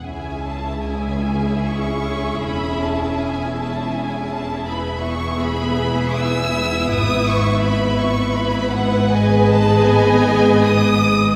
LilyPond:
<<
  \new Staff \with { instrumentName = "Violin section" } { \time 3/4 \key cis \minor \tempo 4 = 80 gis''8 a''8 gis''4 cis'''4 | b''8 a''8 gis''8 a''8 gis''8 a''8 | b''8 cis'''8 b''4 e'''4 | dis'''8 cis'''8 b''8 cis'''8 b''8 fis''8 |
\key gis \phrygian gis''8 a''8 gis''4 dis'''4 | }
  \new Staff \with { instrumentName = "Violin section" } { \time 3/4 \key cis \minor << { e''2.~ | e''2. | e''2.~ | e''2. |
\key gis \phrygian dis''2. | } \\ { gis'2.~ | gis'2. | gis'2. | b'2.~ |
b'2. | } >> }
  \new Staff \with { instrumentName = "Viola section" } { \time 3/4 \key cis \minor <cis' e'>2.~ | <cis' e'>2. | <b e'>2.~ | <b e'>2. |
\key gis \phrygian <b gis'>2. | }
  \new Staff \with { instrumentName = "Cello section" } { \clef bass \time 3/4 \key cis \minor cis,2. | e,2.~ | e,2. | gis,2.~ |
\key gis \phrygian gis,2. | }
  \new Staff \with { instrumentName = "Double bass section" } { \clef bass \time 3/4 \key cis \minor cis,2. | e,,2.~ | e,,2. | gis,,2.~ |
\key gis \phrygian gis,,2. | }
>>